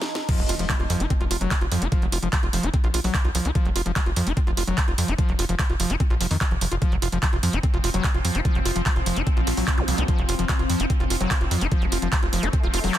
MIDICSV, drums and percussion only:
0, 0, Header, 1, 2, 480
1, 0, Start_track
1, 0, Key_signature, -1, "major"
1, 0, Tempo, 408163
1, 338, Time_signature, 4, 2, 24, 8
1, 15268, End_track
2, 0, Start_track
2, 0, Title_t, "Drums"
2, 18, Note_on_c, 9, 38, 82
2, 135, Note_off_c, 9, 38, 0
2, 178, Note_on_c, 9, 38, 98
2, 295, Note_off_c, 9, 38, 0
2, 338, Note_on_c, 9, 36, 124
2, 338, Note_on_c, 9, 42, 56
2, 338, Note_on_c, 9, 49, 98
2, 455, Note_off_c, 9, 36, 0
2, 455, Note_off_c, 9, 42, 0
2, 455, Note_off_c, 9, 49, 0
2, 458, Note_on_c, 9, 42, 28
2, 576, Note_off_c, 9, 42, 0
2, 578, Note_on_c, 9, 46, 108
2, 695, Note_off_c, 9, 46, 0
2, 698, Note_on_c, 9, 42, 55
2, 816, Note_off_c, 9, 42, 0
2, 817, Note_on_c, 9, 36, 115
2, 818, Note_on_c, 9, 39, 127
2, 818, Note_on_c, 9, 42, 55
2, 935, Note_off_c, 9, 36, 0
2, 936, Note_off_c, 9, 39, 0
2, 936, Note_off_c, 9, 42, 0
2, 938, Note_on_c, 9, 42, 28
2, 1056, Note_off_c, 9, 42, 0
2, 1058, Note_on_c, 9, 46, 105
2, 1176, Note_off_c, 9, 46, 0
2, 1178, Note_on_c, 9, 42, 57
2, 1296, Note_off_c, 9, 42, 0
2, 1297, Note_on_c, 9, 36, 120
2, 1298, Note_on_c, 9, 42, 56
2, 1415, Note_off_c, 9, 36, 0
2, 1416, Note_off_c, 9, 42, 0
2, 1418, Note_on_c, 9, 42, 28
2, 1536, Note_off_c, 9, 42, 0
2, 1538, Note_on_c, 9, 46, 112
2, 1655, Note_off_c, 9, 46, 0
2, 1658, Note_on_c, 9, 42, 51
2, 1775, Note_off_c, 9, 42, 0
2, 1778, Note_on_c, 9, 36, 121
2, 1778, Note_on_c, 9, 39, 126
2, 1778, Note_on_c, 9, 42, 55
2, 1895, Note_off_c, 9, 36, 0
2, 1895, Note_off_c, 9, 39, 0
2, 1895, Note_off_c, 9, 42, 0
2, 1897, Note_on_c, 9, 42, 30
2, 2015, Note_off_c, 9, 42, 0
2, 2017, Note_on_c, 9, 46, 111
2, 2135, Note_off_c, 9, 46, 0
2, 2137, Note_on_c, 9, 42, 57
2, 2255, Note_off_c, 9, 42, 0
2, 2257, Note_on_c, 9, 36, 127
2, 2258, Note_on_c, 9, 42, 53
2, 2375, Note_off_c, 9, 36, 0
2, 2375, Note_off_c, 9, 42, 0
2, 2378, Note_on_c, 9, 42, 27
2, 2495, Note_off_c, 9, 42, 0
2, 2497, Note_on_c, 9, 46, 115
2, 2615, Note_off_c, 9, 46, 0
2, 2617, Note_on_c, 9, 42, 51
2, 2735, Note_off_c, 9, 42, 0
2, 2737, Note_on_c, 9, 36, 121
2, 2737, Note_on_c, 9, 39, 127
2, 2737, Note_on_c, 9, 42, 55
2, 2855, Note_off_c, 9, 36, 0
2, 2855, Note_off_c, 9, 39, 0
2, 2855, Note_off_c, 9, 42, 0
2, 2857, Note_on_c, 9, 42, 27
2, 2975, Note_off_c, 9, 42, 0
2, 2977, Note_on_c, 9, 46, 106
2, 3095, Note_off_c, 9, 46, 0
2, 3098, Note_on_c, 9, 42, 53
2, 3215, Note_off_c, 9, 42, 0
2, 3217, Note_on_c, 9, 36, 126
2, 3217, Note_on_c, 9, 42, 54
2, 3335, Note_off_c, 9, 36, 0
2, 3335, Note_off_c, 9, 42, 0
2, 3338, Note_on_c, 9, 42, 27
2, 3455, Note_off_c, 9, 42, 0
2, 3457, Note_on_c, 9, 46, 115
2, 3575, Note_off_c, 9, 46, 0
2, 3578, Note_on_c, 9, 46, 65
2, 3695, Note_off_c, 9, 46, 0
2, 3697, Note_on_c, 9, 36, 121
2, 3697, Note_on_c, 9, 39, 121
2, 3815, Note_off_c, 9, 36, 0
2, 3815, Note_off_c, 9, 39, 0
2, 3818, Note_on_c, 9, 42, 27
2, 3935, Note_off_c, 9, 42, 0
2, 3937, Note_on_c, 9, 46, 115
2, 4055, Note_off_c, 9, 46, 0
2, 4058, Note_on_c, 9, 42, 57
2, 4175, Note_off_c, 9, 42, 0
2, 4178, Note_on_c, 9, 36, 127
2, 4178, Note_on_c, 9, 42, 51
2, 4295, Note_off_c, 9, 36, 0
2, 4295, Note_off_c, 9, 42, 0
2, 4297, Note_on_c, 9, 42, 26
2, 4415, Note_off_c, 9, 42, 0
2, 4417, Note_on_c, 9, 46, 116
2, 4535, Note_off_c, 9, 46, 0
2, 4537, Note_on_c, 9, 42, 49
2, 4655, Note_off_c, 9, 42, 0
2, 4657, Note_on_c, 9, 39, 123
2, 4657, Note_on_c, 9, 42, 51
2, 4658, Note_on_c, 9, 36, 124
2, 4775, Note_off_c, 9, 36, 0
2, 4775, Note_off_c, 9, 39, 0
2, 4775, Note_off_c, 9, 42, 0
2, 4778, Note_on_c, 9, 42, 26
2, 4895, Note_off_c, 9, 42, 0
2, 4897, Note_on_c, 9, 46, 115
2, 5015, Note_off_c, 9, 46, 0
2, 5018, Note_on_c, 9, 42, 53
2, 5135, Note_off_c, 9, 42, 0
2, 5138, Note_on_c, 9, 36, 127
2, 5138, Note_on_c, 9, 42, 51
2, 5255, Note_off_c, 9, 36, 0
2, 5255, Note_off_c, 9, 42, 0
2, 5258, Note_on_c, 9, 42, 26
2, 5375, Note_off_c, 9, 42, 0
2, 5377, Note_on_c, 9, 46, 118
2, 5495, Note_off_c, 9, 46, 0
2, 5498, Note_on_c, 9, 42, 51
2, 5615, Note_off_c, 9, 42, 0
2, 5618, Note_on_c, 9, 36, 127
2, 5618, Note_on_c, 9, 39, 118
2, 5618, Note_on_c, 9, 42, 53
2, 5735, Note_off_c, 9, 36, 0
2, 5735, Note_off_c, 9, 39, 0
2, 5735, Note_off_c, 9, 42, 0
2, 5737, Note_on_c, 9, 42, 28
2, 5855, Note_off_c, 9, 42, 0
2, 5857, Note_on_c, 9, 46, 121
2, 5975, Note_off_c, 9, 46, 0
2, 5977, Note_on_c, 9, 42, 54
2, 6095, Note_off_c, 9, 42, 0
2, 6098, Note_on_c, 9, 36, 124
2, 6098, Note_on_c, 9, 42, 53
2, 6215, Note_off_c, 9, 36, 0
2, 6215, Note_off_c, 9, 42, 0
2, 6218, Note_on_c, 9, 42, 23
2, 6335, Note_off_c, 9, 42, 0
2, 6337, Note_on_c, 9, 46, 113
2, 6455, Note_off_c, 9, 46, 0
2, 6458, Note_on_c, 9, 42, 51
2, 6575, Note_off_c, 9, 42, 0
2, 6578, Note_on_c, 9, 36, 125
2, 6578, Note_on_c, 9, 39, 118
2, 6578, Note_on_c, 9, 42, 53
2, 6695, Note_off_c, 9, 36, 0
2, 6695, Note_off_c, 9, 39, 0
2, 6695, Note_off_c, 9, 42, 0
2, 6698, Note_on_c, 9, 42, 25
2, 6816, Note_off_c, 9, 42, 0
2, 6818, Note_on_c, 9, 46, 117
2, 6935, Note_off_c, 9, 46, 0
2, 6938, Note_on_c, 9, 42, 53
2, 7055, Note_off_c, 9, 42, 0
2, 7058, Note_on_c, 9, 36, 124
2, 7058, Note_on_c, 9, 42, 50
2, 7175, Note_off_c, 9, 36, 0
2, 7176, Note_off_c, 9, 42, 0
2, 7178, Note_on_c, 9, 42, 25
2, 7296, Note_off_c, 9, 42, 0
2, 7298, Note_on_c, 9, 46, 114
2, 7416, Note_off_c, 9, 46, 0
2, 7418, Note_on_c, 9, 46, 63
2, 7535, Note_off_c, 9, 46, 0
2, 7538, Note_on_c, 9, 36, 123
2, 7538, Note_on_c, 9, 39, 117
2, 7655, Note_off_c, 9, 36, 0
2, 7656, Note_off_c, 9, 39, 0
2, 7658, Note_on_c, 9, 42, 27
2, 7775, Note_off_c, 9, 42, 0
2, 7778, Note_on_c, 9, 46, 118
2, 7895, Note_off_c, 9, 46, 0
2, 7898, Note_on_c, 9, 42, 54
2, 8015, Note_off_c, 9, 42, 0
2, 8018, Note_on_c, 9, 36, 118
2, 8018, Note_on_c, 9, 42, 52
2, 8135, Note_off_c, 9, 36, 0
2, 8135, Note_off_c, 9, 42, 0
2, 8138, Note_on_c, 9, 42, 25
2, 8255, Note_off_c, 9, 42, 0
2, 8258, Note_on_c, 9, 46, 111
2, 8375, Note_off_c, 9, 46, 0
2, 8378, Note_on_c, 9, 42, 49
2, 8496, Note_off_c, 9, 42, 0
2, 8498, Note_on_c, 9, 36, 118
2, 8498, Note_on_c, 9, 39, 112
2, 8498, Note_on_c, 9, 42, 50
2, 8615, Note_off_c, 9, 36, 0
2, 8616, Note_off_c, 9, 39, 0
2, 8616, Note_off_c, 9, 42, 0
2, 8618, Note_on_c, 9, 42, 25
2, 8736, Note_off_c, 9, 42, 0
2, 8738, Note_on_c, 9, 46, 104
2, 8856, Note_off_c, 9, 46, 0
2, 8858, Note_on_c, 9, 42, 54
2, 8976, Note_off_c, 9, 42, 0
2, 8978, Note_on_c, 9, 36, 123
2, 8978, Note_on_c, 9, 42, 49
2, 9095, Note_off_c, 9, 36, 0
2, 9096, Note_off_c, 9, 42, 0
2, 9098, Note_on_c, 9, 42, 26
2, 9216, Note_off_c, 9, 42, 0
2, 9218, Note_on_c, 9, 46, 105
2, 9336, Note_off_c, 9, 46, 0
2, 9338, Note_on_c, 9, 42, 50
2, 9456, Note_off_c, 9, 42, 0
2, 9458, Note_on_c, 9, 36, 121
2, 9458, Note_on_c, 9, 39, 116
2, 9458, Note_on_c, 9, 42, 52
2, 9575, Note_off_c, 9, 36, 0
2, 9576, Note_off_c, 9, 39, 0
2, 9576, Note_off_c, 9, 42, 0
2, 9578, Note_on_c, 9, 42, 27
2, 9696, Note_off_c, 9, 42, 0
2, 9698, Note_on_c, 9, 46, 113
2, 9816, Note_off_c, 9, 46, 0
2, 9818, Note_on_c, 9, 42, 51
2, 9936, Note_off_c, 9, 42, 0
2, 9938, Note_on_c, 9, 36, 118
2, 9938, Note_on_c, 9, 42, 51
2, 10055, Note_off_c, 9, 36, 0
2, 10056, Note_off_c, 9, 42, 0
2, 10058, Note_on_c, 9, 42, 26
2, 10176, Note_off_c, 9, 42, 0
2, 10178, Note_on_c, 9, 46, 107
2, 10296, Note_off_c, 9, 46, 0
2, 10298, Note_on_c, 9, 42, 54
2, 10416, Note_off_c, 9, 42, 0
2, 10418, Note_on_c, 9, 36, 110
2, 10418, Note_on_c, 9, 39, 112
2, 10418, Note_on_c, 9, 42, 56
2, 10535, Note_off_c, 9, 36, 0
2, 10536, Note_off_c, 9, 39, 0
2, 10536, Note_off_c, 9, 42, 0
2, 10538, Note_on_c, 9, 42, 27
2, 10656, Note_off_c, 9, 42, 0
2, 10658, Note_on_c, 9, 46, 102
2, 10776, Note_off_c, 9, 46, 0
2, 10778, Note_on_c, 9, 42, 54
2, 10895, Note_off_c, 9, 42, 0
2, 10898, Note_on_c, 9, 36, 119
2, 10898, Note_on_c, 9, 42, 52
2, 11015, Note_off_c, 9, 36, 0
2, 11015, Note_off_c, 9, 42, 0
2, 11018, Note_on_c, 9, 42, 26
2, 11136, Note_off_c, 9, 42, 0
2, 11138, Note_on_c, 9, 46, 104
2, 11256, Note_off_c, 9, 46, 0
2, 11258, Note_on_c, 9, 46, 59
2, 11376, Note_off_c, 9, 46, 0
2, 11378, Note_on_c, 9, 36, 113
2, 11378, Note_on_c, 9, 39, 115
2, 11378, Note_on_c, 9, 42, 54
2, 11496, Note_off_c, 9, 36, 0
2, 11496, Note_off_c, 9, 39, 0
2, 11496, Note_off_c, 9, 42, 0
2, 11498, Note_on_c, 9, 42, 28
2, 11616, Note_off_c, 9, 42, 0
2, 11618, Note_on_c, 9, 46, 110
2, 11736, Note_off_c, 9, 46, 0
2, 11738, Note_on_c, 9, 42, 55
2, 11856, Note_off_c, 9, 42, 0
2, 11858, Note_on_c, 9, 36, 117
2, 11858, Note_on_c, 9, 42, 52
2, 11975, Note_off_c, 9, 36, 0
2, 11976, Note_off_c, 9, 42, 0
2, 11978, Note_on_c, 9, 42, 26
2, 12096, Note_off_c, 9, 42, 0
2, 12098, Note_on_c, 9, 46, 104
2, 12215, Note_off_c, 9, 46, 0
2, 12218, Note_on_c, 9, 42, 53
2, 12336, Note_off_c, 9, 42, 0
2, 12338, Note_on_c, 9, 36, 114
2, 12338, Note_on_c, 9, 39, 118
2, 12338, Note_on_c, 9, 42, 55
2, 12455, Note_off_c, 9, 36, 0
2, 12456, Note_off_c, 9, 39, 0
2, 12456, Note_off_c, 9, 42, 0
2, 12458, Note_on_c, 9, 42, 28
2, 12576, Note_off_c, 9, 42, 0
2, 12578, Note_on_c, 9, 46, 100
2, 12696, Note_off_c, 9, 46, 0
2, 12698, Note_on_c, 9, 42, 56
2, 12816, Note_off_c, 9, 42, 0
2, 12818, Note_on_c, 9, 36, 117
2, 12818, Note_on_c, 9, 42, 55
2, 12936, Note_off_c, 9, 36, 0
2, 12936, Note_off_c, 9, 42, 0
2, 12938, Note_on_c, 9, 42, 27
2, 13056, Note_off_c, 9, 42, 0
2, 13058, Note_on_c, 9, 46, 107
2, 13176, Note_off_c, 9, 46, 0
2, 13178, Note_on_c, 9, 42, 52
2, 13296, Note_off_c, 9, 42, 0
2, 13298, Note_on_c, 9, 36, 111
2, 13298, Note_on_c, 9, 39, 115
2, 13298, Note_on_c, 9, 42, 56
2, 13415, Note_off_c, 9, 36, 0
2, 13416, Note_off_c, 9, 39, 0
2, 13416, Note_off_c, 9, 42, 0
2, 13418, Note_on_c, 9, 42, 27
2, 13536, Note_off_c, 9, 42, 0
2, 13538, Note_on_c, 9, 46, 106
2, 13656, Note_off_c, 9, 46, 0
2, 13658, Note_on_c, 9, 42, 58
2, 13776, Note_off_c, 9, 42, 0
2, 13778, Note_on_c, 9, 36, 117
2, 13778, Note_on_c, 9, 42, 54
2, 13895, Note_off_c, 9, 36, 0
2, 13896, Note_off_c, 9, 42, 0
2, 13898, Note_on_c, 9, 42, 28
2, 14016, Note_off_c, 9, 42, 0
2, 14018, Note_on_c, 9, 46, 104
2, 14136, Note_off_c, 9, 46, 0
2, 14138, Note_on_c, 9, 42, 57
2, 14256, Note_off_c, 9, 42, 0
2, 14258, Note_on_c, 9, 36, 116
2, 14258, Note_on_c, 9, 39, 127
2, 14258, Note_on_c, 9, 42, 58
2, 14376, Note_off_c, 9, 36, 0
2, 14376, Note_off_c, 9, 39, 0
2, 14376, Note_off_c, 9, 42, 0
2, 14378, Note_on_c, 9, 42, 30
2, 14496, Note_off_c, 9, 42, 0
2, 14498, Note_on_c, 9, 46, 108
2, 14616, Note_off_c, 9, 46, 0
2, 14618, Note_on_c, 9, 42, 59
2, 14736, Note_off_c, 9, 42, 0
2, 14738, Note_on_c, 9, 36, 119
2, 14738, Note_on_c, 9, 42, 58
2, 14855, Note_off_c, 9, 36, 0
2, 14856, Note_off_c, 9, 42, 0
2, 14858, Note_on_c, 9, 42, 28
2, 14976, Note_off_c, 9, 42, 0
2, 14978, Note_on_c, 9, 46, 105
2, 15096, Note_off_c, 9, 46, 0
2, 15098, Note_on_c, 9, 46, 60
2, 15216, Note_off_c, 9, 46, 0
2, 15218, Note_on_c, 9, 39, 122
2, 15218, Note_on_c, 9, 42, 55
2, 15268, Note_off_c, 9, 39, 0
2, 15268, Note_off_c, 9, 42, 0
2, 15268, End_track
0, 0, End_of_file